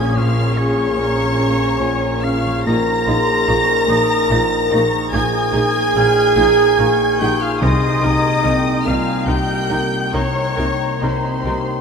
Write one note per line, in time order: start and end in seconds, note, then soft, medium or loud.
0.00 0.18 A#1 medium
0.00 2.65 A#1 medium
0.00 0.14 A#2 medium
0.00 0.17 A#2 medium
0.00 2.64 A#2 medium
0.00 2.44 F3 medium
0.00 0.18 C#4 medium
0.00 0.34 C#4 medium
0.00 2.65 C#4 medium
0.00 0.18 F4 medium
0.00 0.15 G#4 medium
0.00 0.18 G#4 medium
0.00 0.56 G#4 medium
0.00 2.61 G#4 medium
0.00 0.75 A#4 medium
0.00 0.96 C#5 medium
0.00 0.16 G#5 medium
0.00 0.19 G#5 medium
0.00 1.16 G#5 medium
0.00 1.37 A#5 medium
0.00 0.16 D#6 medium
0.00 0.17 G#6 medium
0.15 0.56 A#1 medium
0.15 2.66 A#2 medium
0.15 0.56 A#2 medium
0.15 0.55 F4 medium
0.15 0.56 F5 medium
0.15 0.59 F5 medium
0.15 0.97 C#6 medium
0.15 0.56 F6 loud
0.35 2.22 C#4 medium
0.54 2.18 C#4 medium
0.54 3.07 G#4 medium
0.54 2.22 C#5 loud
0.54 2.25 C#5 loud
0.54 2.22 C#6 loud
0.58 0.94 C#4 soft
0.58 0.94 F4 medium
0.58 0.94 G#4 medium
0.76 1.99 A#4 medium
0.97 1.37 A#1 medium
0.97 1.37 A#2 medium
0.97 1.79 C#5 medium
0.97 1.80 A#5 medium
1.17 1.58 G#5 medium
1.38 1.76 C#4 medium
1.38 1.76 F4 soft
1.38 1.77 G#4 medium
1.38 3.89 A#5 medium
1.59 3.69 G#5 medium
1.79 2.21 A#1 medium
1.79 2.20 A#2 medium
1.79 2.69 C#5 medium
1.79 2.23 G#5 medium
2.00 3.27 A#4 medium
2.20 2.69 C#4 medium
2.20 2.62 C#4 medium
2.20 2.62 F4 medium
2.20 2.66 F4 medium
2.20 2.64 F5 medium
2.20 2.66 F5 medium
2.20 2.65 C#6 medium
2.20 2.64 F6 loud
2.24 2.62 G#4 medium
2.45 2.69 F3 medium
2.63 2.74 A#1 medium
2.63 3.06 A#1 medium
2.63 2.74 A#2 medium
2.63 3.06 A#2 medium
2.63 5.12 A#2 medium
2.63 2.74 D#4 medium
2.63 2.74 G#4 medium
2.63 4.95 A#4 loud
2.63 5.08 A#5 loud
2.63 3.06 A#5 medium
2.63 4.82 A#5 loud
2.63 5.08 A#6 loud
2.87 4.71 D#4 medium
3.06 3.14 A#1 medium
3.06 3.15 A#2 medium
3.06 3.45 A#3 medium
3.06 3.14 D#4 medium
3.06 3.45 D#4 medium
3.06 3.14 G#4 medium
3.06 5.54 G#4 medium
3.06 3.45 G#4 medium
3.06 3.48 C6 medium
3.28 4.51 A#4 medium
3.47 3.56 A#1 medium
3.47 3.88 A#1 medium
3.47 3.56 A#2 medium
3.47 3.88 A#2 medium
3.47 3.55 D#4 medium
3.47 3.56 G#4 medium
3.47 4.31 D#5 medium
3.47 3.89 C#6 medium
3.70 4.09 G#5 medium
3.88 3.97 A#1 medium
3.88 3.97 A#2 medium
3.88 4.27 A#3 medium
3.88 3.96 D#4 medium
3.88 4.27 D#4 medium
3.88 3.96 G#4 medium
3.88 4.27 G#4 medium
3.88 6.36 A#5 medium
3.88 4.31 D#6 medium
4.10 6.16 G#5 medium
4.30 4.38 A#1 medium
4.30 4.71 A#1 medium
4.30 4.39 A#2 medium
4.30 4.71 A#2 medium
4.30 4.38 D#4 medium
4.30 4.38 G#4 medium
4.30 5.94 D#5 medium
4.30 4.54 A#5 medium
4.53 5.74 A#4 medium
4.70 4.79 A#1 medium
4.70 4.81 A#2 medium
4.70 5.09 A#3 medium
4.70 4.78 D#4 medium
4.70 5.32 D#4 medium
4.70 5.10 D#4 medium
4.70 4.79 G#4 medium
4.70 5.10 G#4 medium
4.70 5.13 C#6 medium
4.92 7.40 A#3 medium
5.12 5.20 A#1 medium
5.12 5.54 A#1 medium
5.12 7.65 A#2 medium
5.12 5.22 A#2 medium
5.12 5.54 A#2 medium
5.12 5.20 D#4 medium
5.12 7.16 G#4 loud
5.12 5.21 G#4 medium
5.12 7.16 G#5 loud
5.12 7.23 G#5 loud
5.12 5.53 D#6 medium
5.12 7.17 G#6 loud
5.33 7.20 D#4 medium
5.53 5.61 A#1 medium
5.53 5.62 A#2 medium
5.53 5.92 A#3 medium
5.53 5.61 D#4 medium
5.53 5.61 G#4 medium
5.53 7.66 G#4 medium
5.53 5.95 D#6 medium
5.57 5.93 D#4 medium
5.57 5.93 G#4 medium
5.75 6.99 A#4 medium
5.95 6.03 A#1 medium
5.95 6.36 A#1 medium
5.95 6.04 A#2 medium
5.95 6.36 A#2 medium
5.95 6.03 D#4 medium
5.95 6.04 G#4 medium
5.95 6.78 D#5 medium
5.95 6.38 F6 medium
6.17 6.56 G#5 medium
6.37 6.45 A#1 medium
6.37 6.45 A#2 medium
6.37 6.75 A#3 medium
6.37 6.45 D#4 medium
6.37 6.75 D#4 medium
6.37 6.45 G#4 medium
6.37 6.76 G#4 medium
6.37 8.84 A#5 medium
6.37 6.79 D#6 medium
6.57 7.65 G#5 medium
6.78 7.19 A#1 medium
6.78 6.87 A#1 medium
6.78 7.19 A#2 medium
6.78 6.87 A#2 medium
6.78 6.86 D#4 medium
6.78 6.86 G#4 medium
6.78 8.42 D#5 medium
6.78 7.62 C#6 medium
7.00 8.21 A#4 medium
7.19 7.29 A#1 medium
7.19 7.29 A#2 medium
7.19 7.58 A#3 medium
7.19 7.28 D#4 medium
7.19 7.81 D#4 medium
7.19 7.58 D#4 medium
7.19 7.41 G4 medium
7.19 7.28 G#4 medium
7.19 7.59 G#4 medium
7.19 7.41 G5 medium
7.19 7.44 G5 medium
7.19 7.41 G6 medium
7.40 11.32 A#3 medium
7.40 7.61 F4 medium
7.40 7.62 F5 medium
7.40 7.64 F5 medium
7.40 7.62 F6 loud
7.61 8.02 C2 medium
7.61 7.71 C2 medium
7.61 10.13 C3 medium
7.61 7.70 C3 medium
7.61 8.82 C3 loud
7.61 8.02 C3 medium
7.61 7.69 D#4 medium
7.61 8.85 D#4 loud
7.61 7.69 A#4 medium
7.61 8.86 D#5 loud
7.61 8.84 D#5 loud
7.61 8.03 C6 medium
7.61 8.83 D#6 loud
7.82 9.69 D#4 medium
8.02 8.13 C2 medium
8.02 8.11 C3 medium
8.02 8.40 A#3 soft
8.02 8.10 D#4 medium
8.02 8.40 D#4 soft
8.02 8.40 G4 medium
8.02 8.10 A#4 medium
8.02 8.45 A#5 medium
8.23 9.47 A#4 medium
8.43 8.84 C2 medium
8.43 8.52 C2 medium
8.43 8.52 C3 medium
8.43 8.84 C3 medium
8.43 8.51 D#4 medium
8.43 8.51 A#4 medium
8.43 9.26 D#5 medium
8.43 8.87 G5 medium
8.84 8.94 C2 medium
8.84 8.94 C3 medium
8.84 9.24 G3 medium
8.84 9.23 A#3 soft
8.84 9.23 D#4 soft
8.84 8.93 D#4 medium
8.84 9.28 F4 medium
8.84 8.93 A#4 medium
8.84 9.28 F5 medium
8.84 9.30 F5 medium
8.84 9.29 G#5 medium
8.84 11.43 A#5 medium
8.84 9.27 F6 loud
9.06 11.22 G5 medium
9.27 9.35 C2 medium
9.27 9.69 C2 medium
9.27 9.35 C3 medium
9.27 9.69 C3 medium
9.27 9.35 D#4 medium
9.27 10.14 G4 medium
9.27 9.35 A#4 medium
9.27 11.00 D#5 medium
9.27 10.15 G5 medium
9.27 10.13 G5 medium
9.27 10.15 G5 medium
9.27 10.13 G6 loud
9.48 10.79 A#4 medium
9.69 9.77 C2 medium
9.69 9.79 C3 medium
9.69 10.11 A#3 medium
9.69 9.77 D#4 medium
9.69 10.34 D#4 medium
9.69 10.11 D#4 soft
9.69 10.11 G4 soft
9.69 9.77 A#4 medium
9.92 11.81 G3 medium
10.13 10.57 C2 medium
10.13 10.21 C2 medium
10.13 10.57 C3 medium
10.13 10.22 C3 medium
10.13 11.81 C3 medium
10.13 10.21 D#4 medium
10.13 10.21 A#4 medium
10.13 11.01 C#5 medium
10.13 11.04 C#5 medium
10.13 11.01 C#5 loud
10.13 11.81 A#5 medium
10.13 11.02 C#6 loud
10.35 11.81 D#4 medium
10.57 10.65 C2 medium
10.57 10.66 C3 medium
10.57 10.99 A#3 soft
10.57 10.65 D#4 medium
10.57 10.99 D#4 soft
10.57 11.81 G4 medium
10.57 10.99 G4 soft
10.57 10.65 A#4 medium
10.81 11.81 A#4 medium
11.01 11.09 C2 medium
11.01 11.45 C2 medium
11.01 11.45 C3 medium
11.01 11.10 C3 medium
11.01 11.81 C4 medium
11.01 11.10 D#4 medium
11.01 11.10 A#4 medium
11.01 11.81 C5 medium
11.01 11.81 D#5 medium
11.01 11.81 C6 medium
11.24 11.66 G5 medium
11.44 11.53 C2 medium
11.44 11.54 C3 medium
11.44 11.81 A#3 soft
11.44 11.53 D#4 medium
11.44 11.81 D#4 soft
11.44 11.81 G4 medium
11.44 11.54 A#4 medium
11.44 11.81 A#5 medium
11.67 11.81 G5 medium